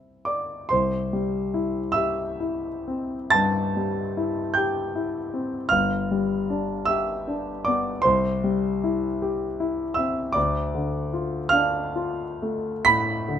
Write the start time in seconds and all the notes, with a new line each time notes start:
Already playing: C2 C4 E4 C5
0.25 D5 D6
0.69 C2 C5 C6
1.13 G3
1.54 E4
1.92 E5 E6
1.96 G4
2.40 E4
2.88 C4
3.30 G2 A5 A6
3.77 G3
4.17 E4
4.54 G4 G5 G6
4.95 E4
5.34 C4
5.69 G1 F5 F6
6.11 G3
6.50 D4
6.85 G4 E5 E6
7.27 D4
7.65 B3 D5 D6
8.02 C2 C5 C6
8.44 G3
8.84 E4
9.22 G4
9.60 E4
9.94 C4 E5 E6
10.32 D2 D5 D6
10.75 D3
11.13 F4
11.49 D4 F5 F6
11.96 F4
12.42 A3
12.85 A2 B5 B6
13.28 D3